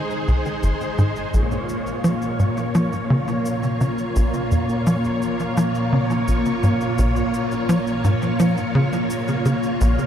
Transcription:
Already playing: string machine G#3 D#4 G#4 C5
0.10 cabasa
0.28 analog synth bass C2, cabasa, low woodblock
0.46 cabasa, low woodblock
0.63 analog synth bass G#1, cabasa
0.81 cabasa, low woodblock
0.98 analog synth bass G#2, cabasa
1.16 cabasa
1.34 analog synth bass A#1, string machine A#2 A#3 F4 C#5, cabasa
1.51 cabasa
1.69 cabasa
1.87 cabasa
2.04 analog synth bass F3, cabasa
2.22 cabasa
2.39 analog synth bass G#2, cabasa
2.57 cabasa
2.75 analog synth bass F3, cabasa
2.93 cabasa
3.10 analog synth bass C#3
3.28 cabasa
3.45 cabasa
3.63 cabasa
3.81 analog synth bass C#3, cabasa
3.98 cabasa
4.16 analog synth bass A#1, cabasa
4.34 cabasa
4.51 analog synth bass F2, cabasa
4.69 cabasa
4.87 analog synth bass F3, cabasa
5.04 cabasa
5.22 cabasa
5.40 cabasa
5.57 analog synth bass F3, cabasa
5.75 cabasa
5.93 analog synth bass C#3
6.10 cabasa
6.28 analog synth bass A#1, cabasa
6.46 cabasa
6.63 analog synth bass G#2, cabasa
6.81 cabasa
6.98 analog synth bass A#1, cabasa
7.16 cabasa
7.34 cabasa
7.51 cabasa
7.69 analog synth bass F3, cabasa
7.87 cabasa
8.04 analog synth bass G#2, cabasa
8.22 cabasa
8.40 analog synth bass F3, cabasa
8.57 cabasa
8.75 analog synth bass C#3
8.93 cabasa
9.10 cabasa
9.28 cabasa
9.45 analog synth bass C#3, cabasa
9.63 cabasa
9.81 analog synth bass A#1, cabasa
9.99 cabasa

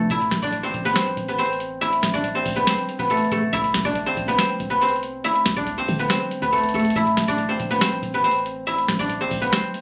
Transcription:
Already playing: tine electric piano C3 F3 A3 D4 F4, guzheng A3 B3 D4 E4 A4 B4 D5 E5
0.10 808-style bass A1, guzheng E4 E5, kick, closed hi-hat
0.21 closed hi-hat
0.31 808-style bass A1, kick, snare
0.42 guzheng D4 D5, kick, closed hi-hat
0.53 closed hi-hat
0.63 guzheng C4 C5
0.74 808-style bass A1, kick, closed hi-hat
0.85 guzheng B3 B4, closed hi-hat
0.96 guzheng C4 C5, snare, closed hi-hat
1.06 closed hi-hat
1.17 808-style bass A1, kick, closed hi-hat
1.28 guzheng B3 B4, closed hi-hat
1.38 guzheng C4 C5, closed hi-hat
1.46 closed hi-hat
1.53 closed hi-hat
1.60 closed hi-hat
1.81 guzheng E4 E5, closed hi-hat
1.93 closed hi-hat
2.03 808-style bass A1, kick, snare
2.14 guzheng D4 D5, kick, closed hi-hat
2.24 closed hi-hat
2.35 guzheng C4 C5
2.46 808-style bass C2, kick, open hi-hat
2.56 guzheng B3 B4, closed hi-hat
2.67 guzheng C4 C5, snare, closed hi-hat
2.78 closed hi-hat
2.89 closed hi-hat
2.99 808-style bass A1, guzheng B3 B4, kick, closed hi-hat
3.10 guzheng A3 A4, closed hi-hat
3.17 closed hi-hat
3.24 closed hi-hat
3.31 808-style bass A1, guzheng A3 A4, kick, closed hi-hat
3.53 808-style bass C2, guzheng E4 E5, kick, closed hi-hat
3.64 closed hi-hat
3.74 808-style bass C2, kick, snare
3.85 guzheng D4 D5, kick, closed hi-hat
3.95 closed hi-hat
4.06 guzheng C4 C5
4.17 808-style bass C2, kick, closed hi-hat
4.28 guzheng B3 B4, closed hi-hat
4.39 guzheng C4 C5, snare, closed hi-hat
4.49 closed hi-hat
4.60 808-style bass C2, kick, closed hi-hat
4.70 guzheng B3 B4, closed hi-hat
4.81 guzheng C4 C5, closed hi-hat
4.89 closed hi-hat
4.96 closed hi-hat
5.03 closed hi-hat
5.24 guzheng E4 E5, closed hi-hat
5.36 closed hi-hat
5.46 808-style bass D2, kick, snare
5.56 guzheng D4 D5, kick, closed hi-hat
5.67 closed hi-hat
5.78 808-style bass C2, guzheng C4 C5
5.88 808-style bass D3, kick, open hi-hat
5.99 guzheng B3 B4, closed hi-hat
6.10 guzheng C4 C5, snare, closed hi-hat
6.20 closed hi-hat
6.31 closed hi-hat
6.42 808-style bass D2, guzheng B3 B4, kick, closed hi-hat
6.52 guzheng A3 A4, closed hi-hat
6.58 closed hi-hat
6.63 closed hi-hat
6.69 closed hi-hat
6.74 808-style bass D2, guzheng A3 A4, kick, closed hi-hat
6.80 closed hi-hat
6.85 closed hi-hat
6.90 closed hi-hat
6.96 808-style bass A1, guzheng E4 E5, kick, closed hi-hat
7.07 closed hi-hat
7.17 808-style bass A1, kick, snare
7.28 guzheng D4 D5, kick, closed hi-hat
7.38 closed hi-hat
7.49 guzheng C4 C5
7.60 808-style bass A1, kick, closed hi-hat
7.71 guzheng B3 B4, closed hi-hat
7.81 guzheng C4 C5, snare, closed hi-hat
7.92 closed hi-hat
8.03 808-style bass A1, kick, closed hi-hat
8.14 guzheng B3 B4, closed hi-hat
8.24 guzheng C4 C5, closed hi-hat
8.31 closed hi-hat
8.39 closed hi-hat
8.46 closed hi-hat
8.67 guzheng E4 E5, closed hi-hat
8.78 closed hi-hat
8.89 808-style bass A1, kick, snare
8.99 guzheng D4 D5, kick, closed hi-hat
9.10 closed hi-hat
9.21 guzheng C4 C5
9.31 808-style bass C2, kick, open hi-hat
9.41 guzheng B3 B4, closed hi-hat
9.53 guzheng C4 C5, snare, closed hi-hat
9.63 closed hi-hat
9.74 closed hi-hat

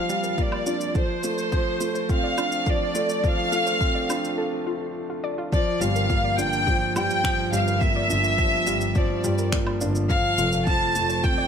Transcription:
Already playing: grand piano F3 G3 A#3 D4, violin section F5
0.09 grand piano G3, synth arpeggio sound F4, shaker
0.24 synth arpeggio sound A#4, shaker
0.38 grand piano A#3, synth arpeggio sound F4, violin section D5, kick, shaker
0.52 synth arpeggio sound D5, low woodblock
0.66 grand piano D4, synth arpeggio sound F4, shaker
0.81 shaker
0.95 grand piano F3, synth arpeggio sound A4, violin section C5, kick, shaker
1.23 grand piano A3, synth arpeggio sound F4, shaker
1.38 shaker
1.52 grand piano F3, kick, shaker
1.80 grand piano A3, synth arpeggio sound F4, shaker
1.95 synth arpeggio sound C5, shaker
2.09 grand piano C4, synth arpeggio sound F4, violin section F5, kick, shaker
2.23 synth arpeggio sound D5
2.38 grand piano D4, synth arpeggio sound F4, low woodblock, shaker
2.52 shaker
2.66 grand piano F3, synth arpeggio sound A4, violin section D5, kick, shaker
2.95 grand piano A3, synth arpeggio sound F4, shaker
3.09 shaker
3.23 grand piano F3, violin section F5, kick, shaker
3.52 grand piano A3, synth arpeggio sound F4, shaker
3.67 synth arpeggio sound C5, shaker
3.81 grand piano C4, synth arpeggio sound F4, kick, shaker
3.95 synth arpeggio sound D5
4.09 grand piano D4, synth arpeggio sound F4, low woodblock, shaker
4.24 shaker
4.38 synth arpeggio sound A4
4.67 synth arpeggio sound F4
5.10 synth arpeggio sound F4
5.24 synth arpeggio sound D5
5.38 synth arpeggio sound F4
5.53 grand piano F3, violin section D5, kick, shaker
5.81 double bass section G1, grand piano G3, synth arpeggio sound F4, violin section F5, shaker
5.96 synth arpeggio sound A#4, shaker
6.10 grand piano A#3, synth arpeggio sound F4, kick, shaker
6.24 synth arpeggio sound D5
6.38 double bass section G1, grand piano D4, synth arpeggio sound F4, violin section G5, shaker
6.53 shaker
6.67 grand piano F3, synth arpeggio sound G4, kick, shaker
6.95 double bass section G2, grand piano G3, synth arpeggio sound F4, violin section G5, low woodblock, shaker
7.10 shaker
7.24 grand piano F3, finger snap, kick, shaker
7.52 double bass section G1, grand piano G3, synth arpeggio sound F4, violin section F5, shaker
7.67 synth arpeggio sound A#4, shaker
7.81 grand piano A#3, synth arpeggio sound F4, violin section E5, kick, shaker
7.96 synth arpeggio sound D5
8.09 double bass section G1, grand piano D4, synth arpeggio sound F4, shaker
8.24 shaker
8.38 grand piano F3, synth arpeggio sound G4, kick, shaker
8.66 double bass section G1, grand piano G3, synth arpeggio sound F4, shaker
8.81 shaker
8.95 grand piano F3, violin section D5, kick, shaker
9.24 double bass section G2, grand piano G3, synth arpeggio sound F4, shaker
9.38 synth arpeggio sound A#4, shaker
9.52 grand piano A#3, synth arpeggio sound F4, finger snap, kick, shaker
9.67 synth arpeggio sound D5, low woodblock
9.81 double bass section G1, grand piano D4, synth arpeggio sound F4, shaker
9.95 shaker
10.09 grand piano F3, synth arpeggio sound A4, violin section F5, kick, shaker
10.38 double bass section F1, grand piano A3, synth arpeggio sound F4, shaker
10.53 shaker
10.67 grand piano F3, violin section A5, kick, shaker
10.95 double bass section F1, grand piano A3, synth arpeggio sound F4, shaker
11.09 synth arpeggio sound C5, shaker
11.24 grand piano C4, synth arpeggio sound F4, violin section G5, kick, shaker
11.38 synth arpeggio sound D5

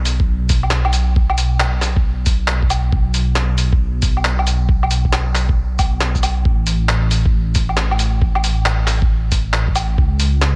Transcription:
Already playing: detuned saw bass B1
0.05 open hi-hat, shaker
0.20 kick
0.49 kick, open hi-hat, shaker
0.63 low woodblock
0.71 clap
0.85 low woodblock
0.93 open hi-hat, shaker
1.16 kick
1.30 low woodblock
1.38 open hi-hat, shaker
1.60 clap, low woodblock
1.82 clap, open hi-hat, shaker
1.96 kick
2.26 kick, open hi-hat, shaker
2.48 clap
2.63 kick
2.70 open hi-hat, low woodblock, shaker
2.92 detuned saw bass B1, kick
3.14 open hi-hat, shaker
3.36 clap
3.58 open hi-hat, shaker
3.73 kick
4.02 kick, open hi-hat, shaker
4.17 low woodblock
4.25 clap
4.39 low woodblock
4.47 open hi-hat, shaker
4.69 kick
4.83 low woodblock
4.91 open hi-hat, shaker
5.05 kick
5.13 clap, low woodblock
5.35 clap, open hi-hat, shaker
5.49 kick
5.79 kick, open hi-hat, low woodblock, shaker
6.01 clap
6.15 kick, shaker
6.23 open hi-hat, low woodblock, shaker
6.45 detuned saw bass A1, kick
6.67 open hi-hat, shaker
6.89 clap
7.11 open hi-hat, shaker
7.26 kick
7.55 kick, open hi-hat, shaker
7.69 low woodblock
7.77 clap
7.91 low woodblock
7.99 open hi-hat, shaker
8.22 kick
8.35 low woodblock
8.44 open hi-hat, shaker
8.66 clap, low woodblock
8.87 clap, open hi-hat, shaker
9.02 kick
9.32 kick, open hi-hat, shaker
9.53 clap
9.68 kick
9.76 open hi-hat, low woodblock, shaker
9.98 detuned saw bass C#2, kick
10.20 open hi-hat, shaker
10.42 clap

